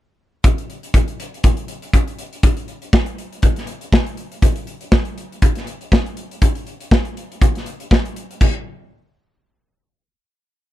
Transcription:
0.44 kick loud
0.44 closed hi-hat medium
0.58 closed hi-hat soft
0.70 closed hi-hat soft
0.83 closed hi-hat soft
0.94 kick loud
0.94 closed hi-hat medium
1.08 closed hi-hat soft
1.20 closed hi-hat medium
1.34 closed hi-hat soft
1.44 kick loud
1.44 closed hi-hat medium
1.57 closed hi-hat soft
1.68 closed hi-hat medium
1.82 closed hi-hat soft
1.93 kick medium
1.93 closed hi-hat medium
2.08 closed hi-hat soft
2.18 closed hi-hat medium
2.33 closed hi-hat soft
2.43 kick loud
2.43 closed hi-hat medium
2.57 closed hi-hat soft
2.68 closed hi-hat soft
2.82 closed hi-hat soft
2.93 kick loud
2.93 snare loud
3.06 closed hi-hat soft
3.18 closed hi-hat medium
3.33 closed hi-hat soft
3.42 kick loud
3.42 closed hi-hat medium
3.56 snare soft
3.56 closed hi-hat soft
3.67 closed hi-hat medium
3.81 closed hi-hat soft
3.92 kick medium
3.92 snare loud
4.07 closed hi-hat soft
4.17 closed hi-hat medium
4.32 closed hi-hat soft
4.42 kick loud
4.42 closed hi-hat medium
4.56 closed hi-hat soft
4.67 closed hi-hat soft
4.81 closed hi-hat soft
4.92 kick loud
4.92 snare loud
5.05 closed hi-hat soft
5.18 closed hi-hat medium
5.32 closed hi-hat soft
5.42 kick loud
5.42 closed hi-hat medium
5.55 snare soft
5.55 closed hi-hat soft
5.67 closed hi-hat medium
5.81 closed hi-hat soft
5.92 kick medium
5.92 snare loud
6.06 closed hi-hat soft
6.17 closed hi-hat medium
6.31 closed hi-hat soft
6.42 kick loud
6.42 closed hi-hat medium
6.55 closed hi-hat soft
6.67 closed hi-hat soft
6.80 closed hi-hat soft
6.91 kick loud
6.91 snare loud
7.05 closed hi-hat soft
7.17 closed hi-hat medium
7.32 closed hi-hat soft
7.41 kick loud
7.41 closed hi-hat medium
7.55 snare soft
7.55 closed hi-hat soft
7.66 closed hi-hat medium
7.80 closed hi-hat soft
7.91 kick medium
7.91 snare loud
8.05 closed hi-hat soft
8.16 closed hi-hat medium
8.31 closed hi-hat soft
8.41 kick loud
8.41 crash medium

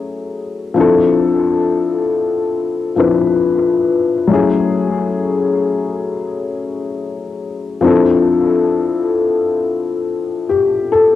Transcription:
0.00 0.72 F#3 medium
0.00 0.73 A3 medium
0.00 0.73 C#4 medium
0.00 0.74 E4 medium
0.00 0.75 G#4 medium
0.74 2.92 F3 medium
0.74 2.93 C4 medium
0.74 2.94 D4 medium
0.79 2.94 E4 medium
0.79 2.95 A4 medium
2.96 4.29 F3 medium
2.96 4.30 C4 soft
2.96 4.30 D4 soft
2.96 4.30 E4 medium
2.96 4.31 B4 medium
4.27 7.77 F#3 medium
4.27 7.78 A3 medium
4.27 7.79 C#4 medium
4.32 7.80 E4 medium
4.32 7.80 G#4 medium
7.81 11.15 F3 medium
7.81 11.15 C4 medium
7.81 11.15 D4 medium
7.86 11.15 E4 medium
7.86 10.45 A4 medium
10.49 10.90 G4 medium
10.92 11.15 A4 medium

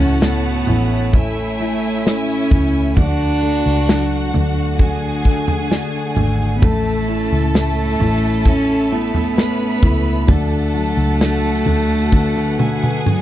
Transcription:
0.00 0.63 C#2 medium
0.00 2.97 A2 medium
0.00 0.21 A3 medium
0.00 6.59 A3 medium
0.00 0.23 C#4 medium
0.00 0.66 C#4 medium
0.00 0.66 E4 soft
0.00 2.94 E4 medium
0.00 1.09 F#4 medium
0.00 2.94 C#5 medium
0.00 1.09 F#5 medium
0.00 1.12 A5 medium
0.21 1.60 A3 medium
0.21 1.13 A3 medium
0.21 1.16 B3 medium
0.21 snare loud
0.67 2.48 A1 medium
0.67 2.04 C#4 soft
0.67 1.59 E4 soft
0.67 floor tom medium
1.13 2.08 A3 medium
1.13 2.05 A3 soft
1.13 2.93 E4 medium
1.13 3.06 E4 medium
1.13 2.93 E5 loud
1.13 2.96 G#5 medium
1.13 kick medium
1.13 floor tom medium
1.60 2.51 A3 medium
1.60 2.50 E4 medium
2.05 2.95 A3 medium
2.05 3.06 C#4 medium
2.05 2.97 C#4 medium
2.05 snare medium
2.51 2.94 C#2 medium
2.51 3.88 A3 medium
2.51 2.96 E4 medium
2.51 kick medium
2.51 floor tom medium
2.96 3.61 D2 loud
2.96 6.59 D4 medium
2.96 6.60 D4 medium
2.96 4.77 D4 loud
2.96 4.76 F#4 medium
2.96 6.60 F#4 medium
2.96 4.76 F#5 medium
2.96 6.59 F#5 medium
2.96 kick loud
2.96 floor tom loud
3.42 4.32 A3 medium
3.42 4.33 D4 medium
3.66 4.30 C#2 medium
3.89 5.68 F#3 medium
3.89 5.25 A3 medium
3.89 snare loud
4.34 6.13 D2 loud
4.34 5.24 A3 medium
4.34 5.70 D4 medium
4.34 floor tom medium
4.78 5.70 D3 soft
4.78 6.72 F#4 medium
4.78 6.59 G#4 medium
4.78 6.59 G#5 loud
4.78 kick medium
4.78 floor tom medium
5.25 6.17 A3 medium
5.25 6.15 A3 medium
5.25 kick medium
5.48 floor tom medium
5.71 6.60 D3 medium
5.71 6.72 D4 medium
5.71 snare medium
6.16 6.59 G#1 medium
6.16 6.61 A3 medium
6.16 7.54 A3 medium
6.16 floor tom medium
6.56 6.66 B3 medium
6.62 7.27 A1 loud
6.62 10.28 A2 medium
6.62 7.53 A3 medium
6.62 7.55 A3 medium
6.62 10.25 C#4 medium
6.62 10.25 E4 medium
6.62 9.33 A4 medium
6.62 12.08 A4 medium
6.62 10.25 E5 medium
6.62 9.33 A5 medium
6.62 kick loud
6.62 floor tom loud
7.08 7.99 C#4 medium
7.08 7.99 E4 medium
7.32 7.97 C#2 loud
7.54 8.45 A3 medium
7.54 8.91 A3 medium
7.54 8.49 A3 loud
7.54 snare loud
8.00 9.79 A1 medium
8.00 9.36 C#4 medium
8.00 8.89 E4 medium
8.00 floor tom medium
8.45 9.35 A3 medium
8.45 8.93 C#4 loud
8.45 10.38 E4 medium
8.45 kick medium
8.45 floor tom medium
8.91 9.82 A3 medium
8.91 10.31 B3 medium
8.91 9.81 E4 medium
9.14 floor tom medium
9.37 10.26 A3 medium
9.37 10.38 C#4 medium
9.37 10.27 B4 medium
9.37 10.27 B5 medium
9.37 snare loud
9.82 10.25 C#2 medium
9.82 11.20 A3 medium
9.82 10.27 E4 medium
9.82 kick medium
9.82 floor tom medium
10.27 10.93 D2 loud
10.27 13.06 A3 loud
10.27 13.22 D4 medium
10.27 13.22 F#4 medium
10.27 12.55 A4 medium
10.27 13.22 F#5 medium
10.27 12.55 A5 medium
10.27 kick loud
10.27 floor tom loud
10.74 12.55 F#3 medium
10.74 11.65 D4 medium
10.97 11.62 C#2 medium
11.21 12.59 A3 medium
11.21 snare loud
11.66 13.22 D2 medium
11.66 12.11 D3 medium
11.66 13.05 D4 soft
11.66 floor tom medium
12.12 12.57 D3 soft
12.12 13.22 F#4 medium
12.12 13.22 B4 medium
12.12 kick medium
12.12 high tom soft
12.36 high tom medium
12.58 13.05 D3 medium
12.58 13.22 A3 medium
12.58 13.22 G#4 medium
12.58 13.22 G#5 medium
12.58 mid tom medium
12.83 mid tom medium
13.06 13.22 D3 medium
13.06 13.22 F#3 medium
13.06 13.22 D4 medium
13.06 mid tom medium

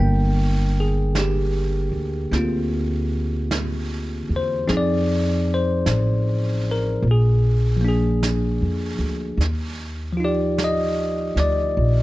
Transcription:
0.00 1.89 G1 medium
0.00 4.68 D3 soft
0.00 2.31 A#3 soft
0.00 4.69 D4 soft
0.00 0.75 A#4 medium
0.00 4.69 G5 soft
0.80 1.16 G#4 medium
1.15 1.92 G4 medium
1.15 brush sweep soft
1.15 snare soft
1.15 hi-hat pedal medium
1.92 2.30 D2 medium
2.31 4.24 D2 medium
2.31 4.68 A#3 soft
2.31 4.66 C4 soft
2.31 brush sweep soft
2.31 snare soft
2.36 4.70 F4 soft
3.51 brush sweep soft
3.51 snare soft
3.51 hi-hat pedal soft
4.29 4.66 E2 medium
4.36 4.71 C5 medium
4.67 5.83 F2 medium
4.67 7.04 F3 medium
4.67 7.04 C4 medium
4.67 7.04 D#4 soft
4.67 7.05 G#4 medium
4.67 brush sweep soft
4.67 snare soft
4.77 5.47 D5 medium
5.54 6.65 C5 medium
5.86 7.00 A1 medium
5.86 brush sweep soft
5.86 snare soft
5.86 hi-hat pedal soft
6.71 7.07 A#4 medium
7.02 8.57 A#1 medium
7.02 brush sweep soft
7.11 7.83 G#4 medium
7.77 9.38 F3 soft
7.81 9.40 A#3 soft
7.81 9.42 D4 soft
7.88 9.44 G#4 medium
8.23 brush sweep soft
8.23 snare soft
8.23 hi-hat pedal medium
8.62 8.98 F2 medium
8.99 9.37 D2 medium
9.37 11.31 D#2 medium
9.37 brush sweep soft
9.37 snare soft
10.13 12.03 F3 soft
10.17 12.03 D#4 soft
10.17 12.03 F4 soft
10.24 12.03 G4 medium
10.24 10.60 D5 medium
10.58 brush sweep soft
10.58 snare soft
10.58 hi-hat pedal medium
10.64 11.36 D#5 medium
11.36 11.73 D2 medium
11.36 snare soft
11.40 12.03 D5 medium
11.77 12.03 A#1 medium
11.77 brush sweep soft

